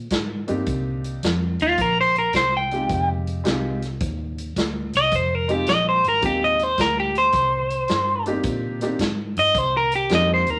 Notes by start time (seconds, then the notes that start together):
0.10 G#2, kick, snare, closed hi-hat
0.47 G2 A#3 C4 D4 D#4 G4, closed hi-hat
0.66 C2, kick, closed hi-hat
1.04 closed hi-hat
1.23 F2, snare, closed hi-hat
1.59 D#2 F4, closed hi-hat
1.78 A#1 A#4, kick, closed hi-hat
2.01 C5
2.15 A#4, closed hi-hat
2.33 C2 C5, kick, snare, closed hi-hat
2.57 G5
2.71 G#3 C4 D#4 F4 G4, closed hi-hat
2.89 F1, kick, closed hi-hat
3.27 closed hi-hat
3.44 C2 G#3 C4 D#4 F4 G4, snare, closed hi-hat
3.82 snare, closed hi-hat
4.00 D#2, kick, closed hi-hat
4.38 closed hi-hat
4.56 D2, kick, snare, closed hi-hat
4.93 C2 D#5, closed hi-hat
5.12 F1 C5, kick, closed hi-hat
5.35 A#4
5.48 G#3 C4 D#4 F4 G4, closed hi-hat
5.66 A#1 D#5, snare, closed hi-hat
5.89 C5
6.04 G#1, closed hi-hat
6.08 A#4
6.21 D#2 G#3 C4 D#4 F4 G4, kick, closed hi-hat
6.26 G4
6.44 D#5
6.59 snare, closed hi-hat
6.63 C5
6.78 D2 A#4, kick, snare, closed hi-hat
7.00 G4
7.15 C5, closed hi-hat
7.32 C2, kick, closed hi-hat
7.70 closed hi-hat
7.88 G2, snare, closed hi-hat
8.26 A#3 C4 D4 D#4 G4, closed hi-hat
8.43 A#2, kick, closed hi-hat
8.81 A#3 C4 D4 D#4 G4, snare, closed hi-hat
8.99 G#2, kick, snare, closed hi-hat
9.37 G2 D#5, closed hi-hat
9.55 C2 C5, kick, closed hi-hat
9.77 A#4
9.92 G4, closed hi-hat
10.09 F2 A#3 C4 D4 D#4 G4, snare, closed hi-hat
10.15 D#5
10.34 C5
10.47 D#2 A#4, closed hi-hat